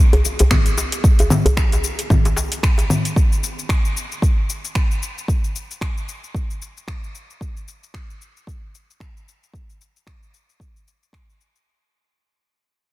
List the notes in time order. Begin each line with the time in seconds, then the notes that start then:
0.13 closed hi-hat, djembe bass
0.25 djembe tone, shaker
0.39 closed hi-hat, djembe slap, djembe bass, shaker
0.51 finger snap, kick, low conga, shaker
0.66 closed hi-hat, shaker
0.78 djembe slap, shaker
0.92 closed hi-hat, shaker
1.04 kick, shaker
1.19 closed hi-hat, djembe tone, shaker
1.30 djembe slap, low conga, shaker
1.46 closed hi-hat, djembe bass, shaker
1.57 finger snap, kick, shaker
1.72 closed hi-hat, djembe slap, djembe tone, shaker
1.84 shaker
1.99 closed hi-hat, shaker
2.10 kick, djembe tone, low conga, shaker
2.25 closed hi-hat, djembe slap, shaker
2.37 djembe slap, shaker
2.52 closed hi-hat, shaker
2.63 finger snap, kick, shaker
2.78 closed hi-hat, djembe slap, shaker
2.90 low conga, shaker
3.05 closed hi-hat, shaker
3.16 kick, shaker
3.32 shaker
3.44 shaker
3.59 shaker
3.69 finger snap, kick, shaker
3.85 shaker
3.97 shaker
4.12 shaker
4.22 kick, shaker
4.50 shaker
4.65 shaker
4.75 finger snap, kick, shaker
4.91 shaker
5.03 shaker
5.18 shaker
5.28 kick, shaker
5.44 shaker
5.56 shaker
5.71 shaker
5.81 finger snap, kick, shaker
5.97 shaker
6.09 shaker
6.24 shaker
6.34 kick, shaker
6.51 shaker
6.62 shaker
6.77 shaker
6.88 finger snap, kick, shaker
7.04 shaker
7.15 shaker
7.30 shaker
7.41 kick, shaker
7.57 shaker
7.68 shaker
7.83 shaker
7.94 finger snap, kick, shaker
8.10 shaker
8.22 shaker
8.37 shaker
8.47 kick, shaker
8.75 shaker
8.90 shaker
9.00 finger snap, kick, shaker
9.17 shaker
9.29 shaker
9.43 shaker
9.53 kick, shaker
9.70 shaker
9.81 shaker
9.96 shaker
10.07 finger snap, kick, shaker
10.23 shaker
10.34 shaker
10.49 shaker
10.60 kick, shaker
10.76 shaker
10.88 shaker
11.03 shaker
11.13 finger snap, kick, shaker
11.30 shaker
11.41 shaker
11.56 shaker